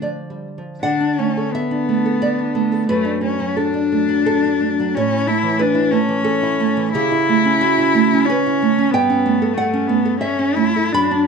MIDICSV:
0, 0, Header, 1, 3, 480
1, 0, Start_track
1, 0, Key_signature, 2, "major"
1, 0, Tempo, 802139
1, 490, Time_signature, 3, 2, 24, 8
1, 490, Tempo, 710900
1, 970, Tempo, 685714
1, 3370, Tempo, 667408
1, 5290, Tempo, 648649
1, 7210, Tempo, 715990
1, 7913, End_track
2, 0, Start_track
2, 0, Title_t, "Cello"
2, 0, Program_c, 0, 42
2, 490, Note_on_c, 0, 62, 66
2, 737, Note_on_c, 0, 61, 59
2, 747, Note_off_c, 0, 62, 0
2, 972, Note_on_c, 0, 59, 64
2, 983, Note_off_c, 0, 61, 0
2, 1914, Note_off_c, 0, 59, 0
2, 1919, Note_on_c, 0, 57, 63
2, 2155, Note_off_c, 0, 57, 0
2, 2161, Note_on_c, 0, 61, 65
2, 2397, Note_on_c, 0, 62, 67
2, 2407, Note_off_c, 0, 61, 0
2, 3365, Note_on_c, 0, 61, 77
2, 3376, Note_off_c, 0, 62, 0
2, 3601, Note_on_c, 0, 64, 73
2, 3611, Note_off_c, 0, 61, 0
2, 3841, Note_on_c, 0, 62, 75
2, 3852, Note_off_c, 0, 64, 0
2, 4057, Note_on_c, 0, 61, 77
2, 4068, Note_off_c, 0, 62, 0
2, 4777, Note_off_c, 0, 61, 0
2, 4781, Note_on_c, 0, 64, 95
2, 5757, Note_on_c, 0, 61, 81
2, 5768, Note_off_c, 0, 64, 0
2, 6233, Note_on_c, 0, 59, 78
2, 6244, Note_off_c, 0, 61, 0
2, 6700, Note_on_c, 0, 57, 69
2, 6711, Note_off_c, 0, 59, 0
2, 6951, Note_on_c, 0, 59, 70
2, 6962, Note_off_c, 0, 57, 0
2, 7187, Note_off_c, 0, 59, 0
2, 7192, Note_on_c, 0, 61, 74
2, 7435, Note_on_c, 0, 64, 77
2, 7445, Note_off_c, 0, 61, 0
2, 7680, Note_on_c, 0, 62, 74
2, 7690, Note_off_c, 0, 64, 0
2, 7908, Note_off_c, 0, 62, 0
2, 7913, End_track
3, 0, Start_track
3, 0, Title_t, "Nylon-string guitar"
3, 0, Program_c, 1, 24
3, 0, Note_on_c, 1, 50, 46
3, 0, Note_on_c, 1, 57, 31
3, 12, Note_on_c, 1, 74, 60
3, 16, Note_on_c, 1, 53, 32
3, 114, Note_off_c, 1, 57, 0
3, 180, Note_on_c, 1, 55, 28
3, 282, Note_off_c, 1, 53, 0
3, 342, Note_off_c, 1, 55, 0
3, 346, Note_on_c, 1, 53, 29
3, 467, Note_off_c, 1, 50, 0
3, 472, Note_off_c, 1, 74, 0
3, 492, Note_off_c, 1, 53, 0
3, 496, Note_on_c, 1, 78, 86
3, 503, Note_on_c, 1, 50, 62
3, 615, Note_on_c, 1, 62, 46
3, 741, Note_on_c, 1, 57, 46
3, 804, Note_off_c, 1, 62, 0
3, 864, Note_on_c, 1, 69, 47
3, 928, Note_off_c, 1, 57, 0
3, 954, Note_off_c, 1, 78, 0
3, 982, Note_on_c, 1, 76, 79
3, 1097, Note_on_c, 1, 62, 50
3, 1220, Note_on_c, 1, 57, 46
3, 1248, Note_off_c, 1, 69, 0
3, 1291, Note_off_c, 1, 62, 0
3, 1339, Note_on_c, 1, 69, 50
3, 1410, Note_off_c, 1, 57, 0
3, 1442, Note_off_c, 1, 76, 0
3, 1452, Note_on_c, 1, 74, 81
3, 1570, Note_on_c, 1, 62, 45
3, 1684, Note_on_c, 1, 57, 48
3, 1714, Note_off_c, 1, 69, 0
3, 1758, Note_off_c, 1, 62, 0
3, 1803, Note_on_c, 1, 69, 51
3, 1874, Note_off_c, 1, 57, 0
3, 1902, Note_off_c, 1, 50, 0
3, 1903, Note_off_c, 1, 74, 0
3, 1922, Note_off_c, 1, 69, 0
3, 1922, Note_on_c, 1, 42, 64
3, 1922, Note_on_c, 1, 71, 90
3, 2032, Note_on_c, 1, 62, 47
3, 2147, Note_on_c, 1, 57, 49
3, 2229, Note_off_c, 1, 62, 0
3, 2277, Note_on_c, 1, 54, 49
3, 2348, Note_off_c, 1, 57, 0
3, 2383, Note_off_c, 1, 71, 0
3, 2396, Note_on_c, 1, 69, 69
3, 2516, Note_on_c, 1, 62, 51
3, 2645, Note_on_c, 1, 57, 54
3, 2668, Note_off_c, 1, 54, 0
3, 2714, Note_off_c, 1, 62, 0
3, 2760, Note_on_c, 1, 54, 51
3, 2840, Note_off_c, 1, 57, 0
3, 2866, Note_off_c, 1, 69, 0
3, 2883, Note_on_c, 1, 69, 88
3, 3010, Note_on_c, 1, 62, 55
3, 3123, Note_on_c, 1, 57, 53
3, 3153, Note_off_c, 1, 54, 0
3, 3204, Note_off_c, 1, 62, 0
3, 3258, Note_on_c, 1, 54, 53
3, 3319, Note_off_c, 1, 57, 0
3, 3341, Note_off_c, 1, 42, 0
3, 3347, Note_off_c, 1, 69, 0
3, 3373, Note_off_c, 1, 54, 0
3, 3375, Note_on_c, 1, 45, 65
3, 3377, Note_on_c, 1, 73, 88
3, 3487, Note_on_c, 1, 64, 52
3, 3598, Note_on_c, 1, 57, 55
3, 3676, Note_off_c, 1, 64, 0
3, 3710, Note_on_c, 1, 52, 54
3, 3789, Note_off_c, 1, 57, 0
3, 3824, Note_off_c, 1, 73, 0
3, 3827, Note_on_c, 1, 71, 85
3, 3938, Note_on_c, 1, 64, 61
3, 4063, Note_on_c, 1, 57, 55
3, 4091, Note_off_c, 1, 52, 0
3, 4135, Note_off_c, 1, 64, 0
3, 4181, Note_on_c, 1, 52, 54
3, 4259, Note_off_c, 1, 57, 0
3, 4286, Note_off_c, 1, 71, 0
3, 4295, Note_on_c, 1, 69, 92
3, 4426, Note_on_c, 1, 64, 56
3, 4552, Note_on_c, 1, 57, 59
3, 4574, Note_off_c, 1, 52, 0
3, 4625, Note_off_c, 1, 64, 0
3, 4672, Note_on_c, 1, 52, 54
3, 4750, Note_off_c, 1, 57, 0
3, 4773, Note_off_c, 1, 69, 0
3, 4775, Note_off_c, 1, 45, 0
3, 4796, Note_off_c, 1, 52, 0
3, 4798, Note_on_c, 1, 49, 76
3, 4802, Note_on_c, 1, 67, 94
3, 4922, Note_on_c, 1, 64, 59
3, 5048, Note_on_c, 1, 57, 56
3, 5119, Note_off_c, 1, 64, 0
3, 5164, Note_on_c, 1, 61, 56
3, 5241, Note_off_c, 1, 57, 0
3, 5269, Note_off_c, 1, 67, 0
3, 5278, Note_on_c, 1, 66, 90
3, 5406, Note_on_c, 1, 64, 61
3, 5527, Note_on_c, 1, 57, 61
3, 5556, Note_off_c, 1, 61, 0
3, 5604, Note_off_c, 1, 64, 0
3, 5664, Note_on_c, 1, 61, 56
3, 5723, Note_off_c, 1, 57, 0
3, 5749, Note_off_c, 1, 66, 0
3, 5784, Note_on_c, 1, 71, 93
3, 5909, Note_on_c, 1, 64, 58
3, 6006, Note_off_c, 1, 71, 0
3, 6027, Note_on_c, 1, 57, 56
3, 6039, Note_off_c, 1, 61, 0
3, 6089, Note_off_c, 1, 64, 0
3, 6145, Note_on_c, 1, 61, 58
3, 6207, Note_off_c, 1, 57, 0
3, 6216, Note_off_c, 1, 49, 0
3, 6255, Note_off_c, 1, 61, 0
3, 6257, Note_on_c, 1, 43, 75
3, 6260, Note_on_c, 1, 79, 98
3, 6377, Note_on_c, 1, 61, 61
3, 6496, Note_on_c, 1, 57, 61
3, 6563, Note_off_c, 1, 61, 0
3, 6615, Note_on_c, 1, 69, 66
3, 6684, Note_off_c, 1, 57, 0
3, 6715, Note_off_c, 1, 79, 0
3, 6731, Note_on_c, 1, 78, 89
3, 6849, Note_on_c, 1, 61, 63
3, 6965, Note_on_c, 1, 57, 59
3, 6995, Note_off_c, 1, 69, 0
3, 7039, Note_off_c, 1, 61, 0
3, 7084, Note_on_c, 1, 69, 59
3, 7159, Note_off_c, 1, 57, 0
3, 7192, Note_off_c, 1, 78, 0
3, 7199, Note_on_c, 1, 76, 95
3, 7322, Note_on_c, 1, 61, 55
3, 7439, Note_on_c, 1, 57, 58
3, 7470, Note_off_c, 1, 69, 0
3, 7520, Note_off_c, 1, 61, 0
3, 7570, Note_on_c, 1, 69, 57
3, 7641, Note_off_c, 1, 57, 0
3, 7670, Note_off_c, 1, 76, 0
3, 7672, Note_off_c, 1, 43, 0
3, 7693, Note_off_c, 1, 69, 0
3, 7693, Note_on_c, 1, 42, 75
3, 7693, Note_on_c, 1, 83, 113
3, 7806, Note_on_c, 1, 62, 56
3, 7913, Note_off_c, 1, 42, 0
3, 7913, Note_off_c, 1, 62, 0
3, 7913, Note_off_c, 1, 83, 0
3, 7913, End_track
0, 0, End_of_file